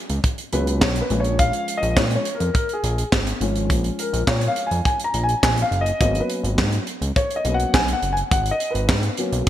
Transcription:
0.10 0.20 C#2 medium
0.10 closed hi-hat medium
0.24 kick loud
0.24 closed hi-hat medium
0.38 closed hi-hat soft
0.52 0.83 C#2 medium
0.52 0.78 F#3 medium
0.52 0.79 A#3 soft
0.52 0.79 B3 soft
0.52 0.79 C#4 medium
0.52 0.80 B4 medium
0.52 closed hi-hat medium
0.67 closed hi-hat medium
0.81 1.02 B1 medium
0.81 1.00 C#5 medium
0.81 kick loud
0.81 snare loud
0.81 clap medium
0.96 closed hi-hat medium
1.01 1.21 B4 medium
1.10 1.52 A#1 loud
1.10 1.93 F3 medium
1.10 1.93 G#3 medium
1.10 1.94 C#4 medium
1.10 closed hi-hat medium
1.20 1.40 C#5 medium
1.24 closed hi-hat soft
1.39 1.79 F5 loud
1.39 kick loud
1.39 closed hi-hat loud
1.53 closed hi-hat medium
1.68 closed hi-hat medium
1.77 1.95 D#5 loud
1.82 1.98 A#1 loud
1.82 closed hi-hat soft
1.97 2.17 A#2 loud
1.97 2.23 F3 soft
1.97 2.23 G#3 soft
1.97 2.23 C#4 medium
1.97 2.02 C#5 medium
1.97 kick loud
1.97 snare loud
1.97 clap medium
2.11 closed hi-hat soft
2.15 2.36 C#5 medium
2.25 closed hi-hat medium
2.35 2.52 A#4 medium
2.40 2.51 F2 medium
2.40 closed hi-hat medium
2.54 2.72 A#4 medium
2.54 kick loud
2.54 closed hi-hat medium
2.69 closed hi-hat soft
2.73 3.27 G#4 medium
2.83 3.04 A#1 medium
2.83 closed hi-hat medium
2.98 closed hi-hat medium
3.12 3.33 G#1 medium
3.12 kick loud
3.12 snare loud
3.12 clap medium
3.27 closed hi-hat medium
3.40 3.72 G#1 medium
3.40 5.68 F3 medium
3.40 5.68 G#3 medium
3.40 5.68 C#4 medium
3.40 closed hi-hat medium
3.56 closed hi-hat soft
3.70 3.91 A#1 loud
3.70 kick loud
3.70 closed hi-hat medium
3.84 closed hi-hat soft
3.99 4.29 A#4 medium
3.99 closed hi-hat medium
4.13 4.24 A#1 loud
4.13 closed hi-hat medium
4.27 4.48 A#2 loud
4.27 4.48 C#5 medium
4.27 kick loud
4.27 snare loud
4.27 clap medium
4.41 closed hi-hat medium
4.48 4.67 F5 medium
4.56 closed hi-hat medium
4.66 4.84 G#5 medium
4.71 4.81 F2 medium
4.71 closed hi-hat medium
4.85 5.05 G#5 loud
4.85 kick loud
4.85 closed hi-hat medium
5.00 closed hi-hat medium
5.04 5.22 A#5 loud
5.14 5.35 A#1 medium
5.14 closed hi-hat medium
5.23 5.41 G#5 medium
5.29 closed hi-hat soft
5.43 5.64 A#1 medium
5.43 5.63 G#5 medium
5.43 kick loud
5.43 snare loud
5.43 clap medium
5.58 closed hi-hat medium
5.62 5.82 F5 loud
5.71 5.92 F#1 medium
5.71 closed hi-hat medium
5.81 5.99 D#5 medium
5.86 closed hi-hat soft
6.00 6.21 G#1 loud
6.00 6.83 F#3 medium
6.00 6.83 A#3 medium
6.00 6.83 B3 soft
6.00 6.84 C#4 medium
6.00 6.21 D#5 medium
6.00 kick loud
6.00 closed hi-hat loud
6.15 closed hi-hat soft
6.20 6.47 B4 medium
6.30 closed hi-hat medium
6.43 6.60 G#1 medium
6.43 closed hi-hat medium
6.58 6.79 G#2 loud
6.58 kick loud
6.58 snare loud
6.58 clap medium
6.72 closed hi-hat medium
6.87 closed hi-hat medium
7.01 7.12 C#2 medium
7.01 closed hi-hat medium
7.16 7.36 C#5 loud
7.16 kick loud
7.16 closed hi-hat medium
7.31 closed hi-hat medium
7.36 7.56 D#5 medium
7.45 7.65 B1 medium
7.45 7.71 F#3 soft
7.45 7.71 A#3 soft
7.45 7.71 B3 soft
7.45 7.71 C#4 medium
7.45 closed hi-hat medium
7.54 7.74 F#5 loud
7.60 closed hi-hat medium
7.74 7.94 B1 medium
7.74 7.94 G#5 loud
7.74 kick loud
7.74 snare loud
7.74 clap medium
7.88 closed hi-hat medium
7.93 8.13 F#5 medium
8.02 8.23 F#1 medium
8.02 closed hi-hat medium
8.13 8.18 G#5 loud
8.17 closed hi-hat soft
8.31 8.52 G#1 loud
8.31 8.52 F#5 loud
8.31 kick loud
8.31 closed hi-hat loud
8.46 closed hi-hat medium
8.51 8.71 D#5 medium
8.60 closed hi-hat medium
8.71 8.90 G#1 medium
8.71 9.24 B4 medium
8.75 closed hi-hat medium
8.89 9.10 G#2 medium
8.89 kick loud
8.89 snare loud
8.89 clap medium
9.03 closed hi-hat soft
9.17 9.49 F#3 medium
9.17 9.49 A#3 soft
9.17 9.49 B3 medium
9.17 9.49 C#4 medium
9.17 closed hi-hat medium
9.32 9.43 B1 medium
9.32 closed hi-hat medium

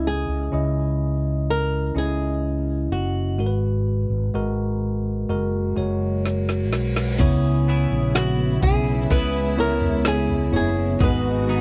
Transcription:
0.00 0.25 C#2 medium
0.00 0.97 C#3 soft
0.00 0.48 C#4 medium
0.00 0.48 E4 soft
0.00 0.49 D#5 medium
0.07 1.45 G#4 medium
0.28 0.51 C#2 medium
0.52 1.92 C#2 medium
0.52 1.88 C#4 medium
0.52 1.89 E4 medium
0.52 1.89 D#5 medium
1.50 1.98 A#4 medium
1.95 2.87 C#2 medium
1.95 3.31 C#4 soft
1.95 3.32 E4 soft
1.95 2.92 G#4 medium
1.95 3.32 D#5 medium
2.90 3.39 F#1 medium
2.90 4.78 F#4 medium
3.38 4.06 G#1 medium
3.38 4.78 G#2 soft
3.38 4.29 G#3 medium
3.38 4.29 F#4 medium
3.38 3.46 A#4 soft
3.46 4.33 B4 medium
4.10 4.32 G#1 medium
4.34 5.26 G#1 medium
4.34 5.28 G#3 medium
4.34 5.28 F#4 medium
4.34 5.29 A#4 medium
5.29 5.74 F#1 medium
5.29 5.75 G#3 medium
5.29 5.75 F#4 medium
5.29 5.75 A#4 medium
5.29 reverse cymbal medium
5.76 6.72 F#1 medium
5.76 7.12 G#3 medium
5.76 7.13 F#4 medium
5.76 7.13 C#5 medium
6.26 snare soft
6.49 snare soft
6.72 7.17 B1 medium
6.72 snare medium
6.96 snare medium
7.19 7.87 C#2 medium
7.19 8.59 C#3 medium
7.19 10.97 C#3 medium
7.19 11.01 C#3 medium
7.19 11.61 G#3 medium
7.19 9.00 B3 medium
7.19 10.97 B3 medium
7.19 9.01 E4 medium
7.19 10.97 E4 medium
7.19 7.69 G#4 medium
7.19 9.01 C#5 medium
7.19 kick loud
7.19 floor tom medium
7.19 crash medium
7.68 9.10 B3 medium
7.68 9.10 E4 medium
7.68 9.12 G#4 medium
7.91 8.59 A#1 medium
8.15 8.63 F#4 medium
8.15 snare medium
8.62 9.07 B1 medium
8.62 9.11 G#4 medium
8.62 kick medium
8.62 floor tom medium
9.10 10.49 C#2 loud
9.10 11.48 B3 medium
9.10 11.11 E4 medium
9.10 11.01 G#4 medium
9.10 9.59 B4 medium
9.10 kick medium
9.57 10.48 B3 medium
9.57 10.48 E4 medium
9.57 10.07 A#4 medium
9.57 10.49 C#5 medium
9.81 floor tom medium
10.05 10.55 G#4 medium
10.05 snare loud
10.29 floor tom medium
10.52 10.97 F#1 medium
10.52 10.98 B3 medium
10.52 10.98 E4 medium
10.52 10.99 C#5 medium
10.52 floor tom medium
10.56 11.03 G#4 medium
11.00 11.61 G#1 medium
11.00 11.61 G#2 medium
11.00 11.61 D#3 medium
11.00 11.61 G#3 medium
11.00 11.61 B3 medium
11.00 11.61 D#4 medium
11.00 11.61 F#4 medium
11.00 11.49 G#4 medium
11.00 11.61 B4 medium
11.00 kick loud
11.00 floor tom medium
11.49 11.61 B3 medium
11.49 11.61 D#4 medium
11.49 11.61 G#4 medium

